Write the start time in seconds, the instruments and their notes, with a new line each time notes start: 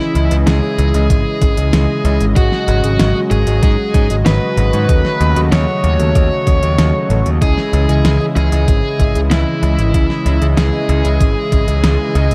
Already playing: fm electric piano C#3 C#4 E4 G#4 D#5, analog synth pad C#3 E3 G#3 E4 D#5, lead electric guitar E4
0.00 snare
0.15 picked electric bass C#2, fm electric piano C#3 C#4 E4 G#4 D#5, closed hi-hat
0.31 picked electric bass C#2, fm electric piano C#3 C#4 E4 G#4 D#5, closed hi-hat
0.47 picked electric bass C#2, lead electric guitar G#4, snare, closed hi-hat
0.63 fm electric piano C#3 C#4 E4 G#4 D#5
0.78 picked electric bass C#2, closed hi-hat
0.94 picked electric bass C#2, fm electric piano C#3 C#4 E4 G#4 D#5, closed hi-hat
1.10 picked electric bass G#1, fm electric piano C#3 C#4 E4 G#4 D#5, kick, closed hi-hat
1.42 picked electric bass G#1, fm electric piano C#3 C#4 E4 G#4 D#5, kick, closed hi-hat
1.57 picked electric bass C#2, fm electric piano C#3 C#4 E4 G#4 D#5, closed hi-hat
1.73 picked electric bass C#2, fm electric piano C#3 C#4 E4 G#4 D#5, snare, closed hi-hat
2.05 picked electric bass C#2, fm electric piano G#3 C#4 E4 G#4 D#5, closed hi-hat
2.21 picked electric bass G#1, closed hi-hat
2.36 picked electric bass G#1, analog synth pad F#3 F#4, fm electric piano G#3 C#4 F#4 G#4 D#5, lead electric guitar F#4, kick, closed hi-hat
2.52 snare
2.68 picked electric bass G#1, fm electric piano G#3 C#4 F#4 G#4 D#5, closed hi-hat
2.84 picked electric bass G#1, fm electric piano G#3 C#4 F#4 G#4 D#5, closed hi-hat
2.99 picked electric bass G#1, snare, closed hi-hat
3.15 fm electric piano G#3 C#4 F#4 G#4 D#5
3.31 picked electric bass G#1, lead electric guitar G#4, closed hi-hat
3.47 picked electric bass G#1, fm electric piano G#3 C#4 F#4 G#4 D#5, closed hi-hat
3.63 picked electric bass G#2, fm electric piano G#3 C#4 F#4 G#4 D#5, kick, closed hi-hat
3.94 picked electric bass G#2, fm electric piano G#3 C#4 F#4 G#4 D#5, kick, closed hi-hat
4.10 picked electric bass G#1, fm electric piano G#3 C#4 F#4 G#4 D#5, closed hi-hat
4.26 picked electric bass G#1, fm electric piano G#3 C#4 F#4 G#4 D#5, lead electric guitar B4, snare, closed hi-hat
4.57 picked electric bass G#1, fm electric piano D#3 C#4 F#4 G#4 D#5, closed hi-hat
4.73 picked electric bass G#2, closed hi-hat
4.89 picked electric bass D#2, analog synth pad C#3 A3, fm electric piano D#3 C#4 F#4 A4 D#5, kick, closed hi-hat
5.05 snare
5.21 picked electric bass D#2, fm electric piano D#3 C#4 F#4 A4 D#5, closed hi-hat
5.36 picked electric bass D#2, fm electric piano D#3 C#4 F#4 A4 D#5, closed hi-hat
5.52 picked electric bass D#2, lead electric guitar C#5, snare, closed hi-hat
5.68 fm electric piano D#3 C#4 F#4 A4 D#5
5.84 picked electric bass D#2, closed hi-hat
5.99 picked electric bass D#2, fm electric piano D#3 C#4 F#4 A4 D#5, closed hi-hat
6.15 picked electric bass D#2, fm electric piano D#3 C#4 F#4 A4 D#5, kick, closed hi-hat
6.47 picked electric bass D#2, fm electric piano D#3 C#4 F#4 A4 D#5, kick, closed hi-hat
6.63 picked electric bass D#2, fm electric piano D#3 C#4 F#4 A4 D#5, closed hi-hat
6.78 picked electric bass D#2, fm electric piano D#3 C#4 F#4 A4, snare, closed hi-hat
7.10 picked electric bass A1, fm electric piano C#3 C#4 F#4 A4 D#5, closed hi-hat
7.26 picked electric bass D#2, closed hi-hat
7.42 picked electric bass C#2, fm electric piano C#3 C#4 E4 G#4 D#5, analog synth pad C#3 E3 G#3 E4, lead electric guitar G#4, kick, closed hi-hat
7.58 snare
7.73 picked electric bass C#2, fm electric piano C#3 C#4 E4 G#4 D#5, closed hi-hat
7.89 picked electric bass C#2, fm electric piano C#3 C#4 E4 G#4 D#5, closed hi-hat
8.05 picked electric bass C#2, snare, closed hi-hat
8.21 fm electric piano C#3 C#4 E4 G#4 D#5
8.36 picked electric bass C#2, lead electric guitar G#4, closed hi-hat
8.52 picked electric bass C#2, fm electric piano C#3 C#4 E4 G#4 D#5, closed hi-hat
8.68 picked electric bass G#1, fm electric piano C#3 C#4 E4 G#4 D#5, kick, closed hi-hat
8.99 picked electric bass G#1, fm electric piano C#3 C#4 E4 G#4 D#5, kick, closed hi-hat
9.15 picked electric bass C#2, fm electric piano C#3 C#4 E4 G#4 D#5, closed hi-hat
9.31 picked electric bass C#2, fm electric piano C#3 C#4 E4 G#4 D#5, lead electric guitar E4, snare, closed hi-hat
9.63 picked electric bass C#2, fm electric piano C#3 C#4 E4 G#4 D#5, closed hi-hat
9.79 picked electric bass G#1, closed hi-hat
9.94 fm electric piano C#3 C#4 E4 G#4 D#5, kick, closed hi-hat
10.10 snare
10.26 picked electric bass C#2, fm electric piano C#3 C#4 E4 G#4 D#5, closed hi-hat
10.42 picked electric bass C#2, fm electric piano C#3 C#4 E4 G#4 D#5, closed hi-hat
10.57 picked electric bass C#2, lead electric guitar G#4, snare, closed hi-hat
10.73 fm electric piano C#3 C#4 E4 G#4 D#5
10.89 picked electric bass C#2, closed hi-hat
11.05 picked electric bass C#2, fm electric piano C#3 C#4 E4 G#4 D#5, closed hi-hat
11.21 picked electric bass G#1, fm electric piano C#3 C#4 E4 G#4 D#5, kick, closed hi-hat
11.52 picked electric bass G#1, fm electric piano C#3 C#4 E4 G#4 D#5, kick, closed hi-hat
11.68 picked electric bass C#2, fm electric piano C#3 C#4 E4 G#4 D#5, closed hi-hat
11.84 picked electric bass C#2, fm electric piano C#3 C#4 E4 G#4 D#5, snare, closed hi-hat
12.15 picked electric bass C#2, fm electric piano G#3 C#4 E4 G#4 D#5, closed hi-hat
12.31 picked electric bass G#1, closed hi-hat